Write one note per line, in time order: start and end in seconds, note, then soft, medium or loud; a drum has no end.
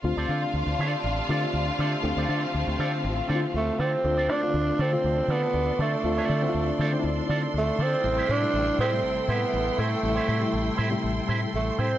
0.03 0.12 D2 medium
0.03 4.00 C3 medium
0.03 0.75 D3 medium
0.03 4.01 F3 medium
0.03 0.75 A3 medium
0.03 4.01 A3 medium
0.03 0.75 C4 medium
0.03 2.03 D4 medium
0.03 4.00 F4 medium
0.03 0.75 F4 medium
0.03 4.00 F5 medium
0.03 muted clean electric guitar stroke soft
0.17 0.24 D2 medium
0.17 0.28 C4 medium
0.17 0.29 F4 medium
0.17 0.29 A4 medium
0.17 0.30 D5 medium
0.29 0.45 D3 medium
0.29 0.43 C4 medium
0.29 0.43 F4 medium
0.29 0.43 A4 medium
0.29 0.42 D5 medium
0.43 muted clean electric guitar stroke soft
0.54 0.62 D2 medium
0.54 muted clean electric guitar stroke soft
0.67 0.74 D2 medium
0.67 muted clean electric guitar stroke soft
0.79 0.95 D3 medium
0.79 0.99 C4 medium
0.79 0.93 F4 medium
0.79 0.92 A4 medium
0.79 0.92 D5 medium
0.93 muted clean electric guitar stroke soft
1.04 1.20 A1 medium
1.04 muted clean electric guitar stroke soft
1.18 muted clean electric guitar stroke soft
1.29 1.82 D3 medium
1.29 1.45 D3 loud
1.29 1.82 A3 medium
1.29 1.47 C4 medium
1.29 1.83 C4 medium
1.29 1.44 F4 medium
1.29 1.83 F4 medium
1.29 1.43 A4 medium
1.29 1.42 D5 medium
1.43 muted clean electric guitar stroke soft
1.53 1.69 D2 medium
1.68 muted clean electric guitar stroke medium
1.79 1.95 D3 medium
1.79 1.96 C4 medium
1.79 1.93 F4 medium
1.79 1.93 A4 medium
1.79 1.92 D5 medium
1.93 muted clean electric guitar stroke soft
2.03 2.12 D2 loud
2.03 2.75 D3 medium
2.03 2.75 A3 medium
2.03 4.02 C4 medium
2.03 2.75 C4 medium
2.03 2.75 D4 medium
2.03 muted clean electric guitar stroke soft
2.17 2.24 D2 medium
2.17 2.28 C4 medium
2.17 2.28 F4 medium
2.17 2.29 A4 medium
2.17 2.29 D5 medium
2.29 2.45 D3 loud
2.29 2.43 C4 medium
2.29 2.42 F4 medium
2.29 2.41 A4 medium
2.29 2.41 D5 medium
2.42 muted clean electric guitar stroke medium
2.54 2.63 D2 medium
2.54 muted clean electric guitar stroke soft
2.68 2.75 D2 loud
2.68 muted clean electric guitar stroke soft
2.79 3.06 D3 medium
2.79 2.96 C4 medium
2.79 2.92 F4 medium
2.79 2.92 A4 medium
2.79 2.92 D5 loud
2.93 muted clean electric guitar stroke soft
3.04 3.20 A1 medium
3.04 muted clean electric guitar stroke soft
3.17 muted clean electric guitar stroke soft
3.28 3.82 D3 medium
3.28 3.45 D3 loud
3.28 3.82 A3 medium
3.28 3.46 C4 medium
3.28 3.82 C4 medium
3.28 3.36 E4 medium
3.28 3.42 F4 medium
3.28 3.41 A4 medium
3.28 3.40 D5 medium
3.35 3.86 F4 medium
3.42 muted clean electric guitar stroke soft
3.54 3.70 D2 medium
3.54 3.81 A3 medium
3.66 muted clean electric guitar stroke soft
3.79 3.95 D3 medium
3.79 3.96 C4 medium
3.79 4.33 C4 loud
3.79 3.93 F4 medium
3.79 3.92 A4 medium
3.79 3.91 D5 medium
3.93 muted clean electric guitar stroke medium
4.03 4.29 D2 medium
4.03 4.31 D3 medium
4.03 4.31 A3 medium
4.03 4.31 C4 medium
4.03 8.00 D4 medium
4.03 4.31 F4 medium
4.03 11.98 A4 medium
4.03 7.99 D5 medium
4.03 11.98 C6 medium
4.03 muted clean electric guitar stroke soft
4.16 4.27 C4 medium
4.16 4.27 F4 medium
4.16 4.28 A4 medium
4.16 4.29 D5 medium
4.28 4.45 D3 loud
4.28 4.43 C4 medium
4.28 4.83 D4 loud
4.28 4.41 F4 medium
4.28 4.41 A4 medium
4.28 4.40 D5 medium
4.42 4.77 D3 medium
4.42 4.77 A3 medium
4.42 4.77 C4 medium
4.42 4.78 F4 medium
4.42 muted clean electric guitar stroke soft
4.53 4.70 D2 medium
4.53 muted clean electric guitar stroke soft
4.67 muted clean electric guitar stroke soft
4.79 4.95 D3 medium
4.79 4.96 C4 medium
4.79 5.33 C4 medium
4.79 4.93 F4 medium
4.79 4.92 A4 medium
4.79 4.92 D5 medium
4.92 5.63 C3 medium
4.92 5.63 D3 medium
4.92 5.63 A3 medium
4.92 5.63 F4 medium
4.92 muted clean electric guitar stroke soft
5.04 5.20 D2 medium
5.04 muted clean electric guitar stroke soft
5.18 muted clean electric guitar stroke soft
5.28 5.44 D3 loud
5.28 5.80 B3 loud
5.28 5.47 C4 medium
5.28 5.42 F4 medium
5.28 5.42 A4 medium
5.28 5.41 D5 medium
5.42 muted clean electric guitar stroke soft
5.54 5.70 D2 medium
5.67 muted clean electric guitar stroke medium
5.79 5.95 D3 loud
5.79 7.26 A3 medium
5.79 5.96 C4 medium
5.79 5.92 F4 medium
5.79 5.92 A4 medium
5.79 5.91 D5 medium
5.92 muted clean electric guitar stroke soft
6.04 6.19 D2 loud
6.04 6.30 D3 medium
6.04 6.31 A3 medium
6.04 6.31 C4 medium
6.04 6.31 F4 medium
6.04 muted clean electric guitar stroke soft
6.17 6.27 C4 medium
6.17 6.28 F4 medium
6.17 6.28 A4 medium
6.17 6.29 D5 medium
6.28 6.45 D3 medium
6.28 6.43 C4 medium
6.28 6.42 F4 medium
6.28 6.42 A4 medium
6.28 6.41 D5 medium
6.41 6.76 D3 medium
6.41 6.77 A3 medium
6.41 6.77 C4 medium
6.41 6.48 E4 medium
6.41 muted clean electric guitar stroke soft
6.49 6.80 F4 medium
6.54 6.70 D2 medium
6.54 muted clean electric guitar stroke soft
6.67 muted clean electric guitar stroke soft
6.79 6.95 D3 medium
6.79 6.97 C4 loud
6.79 6.92 F4 loud
6.79 6.92 A4 medium
6.79 6.91 D5 medium
6.92 7.62 D3 medium
6.92 7.63 A3 medium
6.92 7.63 C4 medium
6.92 6.98 D#4 medium
6.92 muted clean electric guitar stroke soft
7.00 7.66 E4 loud
7.04 7.19 D2 loud
7.04 muted clean electric guitar stroke soft
7.17 muted clean electric guitar stroke soft
7.29 7.45 D3 medium
7.29 7.46 C4 medium
7.29 7.42 F4 medium
7.29 7.42 A4 medium
7.29 7.41 D5 medium
7.43 muted clean electric guitar stroke soft
7.54 7.70 D2 medium
7.54 muted clean electric guitar stroke soft
7.58 7.84 A3 medium
7.68 muted clean electric guitar stroke soft
7.78 7.94 D3 medium
7.78 7.92 C4 medium
7.78 8.33 C4 loud
7.78 7.93 F4 medium
7.78 7.92 A4 medium
7.78 7.91 D5 medium
7.92 8.03 C4 soft
7.92 8.04 F4 soft
7.92 8.05 A4 medium
7.92 8.05 D5 medium
8.03 8.20 A1 loud
8.03 8.30 C3 medium
8.03 8.30 G3 medium
8.03 8.30 A3 medium
8.03 11.98 E4 medium
8.03 8.31 E4 medium
8.03 11.98 G5 medium
8.03 muted clean electric guitar stroke soft
8.17 8.28 C4 medium
8.17 8.28 E4 medium
8.17 8.29 G4 medium
8.17 8.29 C5 medium
8.29 8.45 A2 medium
8.29 8.43 C4 soft
8.29 8.79 D4 loud
8.29 8.43 E4 medium
8.29 8.43 G4 medium
8.29 8.42 C5 medium
8.41 8.76 C3 medium
8.41 8.76 G3 medium
8.41 8.77 A3 medium
8.41 8.77 E4 medium
8.41 muted clean electric guitar stroke soft
8.54 8.69 A1 loud
8.54 muted clean electric guitar stroke soft
8.67 muted clean electric guitar stroke soft
8.79 9.03 A2 loud
8.79 8.96 C4 medium
8.79 9.31 C4 loud
8.79 8.93 E4 medium
8.79 8.92 G4 loud
8.79 8.92 C5 loud
8.91 9.62 C3 medium
8.91 9.62 G3 medium
8.91 9.62 A3 medium
8.91 9.62 E4 medium
8.91 muted clean electric guitar stroke soft
9.03 9.19 A1 medium
9.03 muted clean electric guitar stroke soft
9.17 muted clean electric guitar stroke medium
9.28 9.44 A2 loud
9.28 9.81 B3 medium
9.28 9.45 C4 medium
9.28 9.41 E4 medium
9.28 9.41 G4 medium
9.28 9.40 C5 medium
9.42 muted clean electric guitar stroke soft
9.54 9.69 A1 medium
9.66 muted clean electric guitar stroke soft
9.77 9.94 A2 medium
9.77 11.29 A3 medium
9.77 9.95 C4 medium
9.77 9.91 E4 medium
9.77 9.90 G4 medium
9.77 9.89 C5 medium
9.91 muted clean electric guitar stroke soft
10.02 10.19 A1 loud
10.02 10.29 C3 medium
10.02 10.30 G3 medium
10.02 10.30 A3 medium
10.02 10.30 E4 medium
10.02 muted clean electric guitar stroke soft
10.16 10.26 C4 medium
10.16 10.27 E4 medium
10.16 10.27 G4 medium
10.16 10.28 C5 medium
10.27 10.44 A2 medium
10.27 10.42 C4 medium
10.27 10.41 E4 medium
10.27 10.41 G4 medium
10.27 10.40 C5 medium
10.40 10.75 C3 medium
10.40 10.76 G3 medium
10.40 10.76 A3 medium
10.40 10.76 E4 medium
10.40 muted clean electric guitar stroke medium
10.52 10.69 A1 medium
10.52 muted clean electric guitar stroke soft
10.65 muted clean electric guitar stroke soft
10.76 10.94 A2 loud
10.76 10.95 C4 medium
10.76 10.90 E4 medium
10.76 10.90 G4 medium
10.76 10.89 C5 loud
10.90 11.61 C3 medium
10.90 11.62 G3 medium
10.90 11.62 A3 medium
10.90 11.62 E4 medium
10.90 muted clean electric guitar stroke soft
11.02 11.19 A1 medium
11.02 muted clean electric guitar stroke soft
11.15 muted clean electric guitar stroke soft
11.27 11.44 A2 medium
11.27 11.45 C4 medium
11.27 11.41 E4 medium
11.27 11.40 G4 medium
11.27 11.40 C5 medium
11.41 muted clean electric guitar stroke soft
11.54 11.69 A1 medium
11.54 11.81 A3 medium
11.66 muted clean electric guitar stroke soft
11.77 11.94 A2 medium
11.77 11.95 C4 medium
11.77 11.98 C4 loud
11.77 11.92 E4 medium
11.77 11.91 G4 medium
11.77 11.91 C5 medium
11.92 muted clean electric guitar stroke soft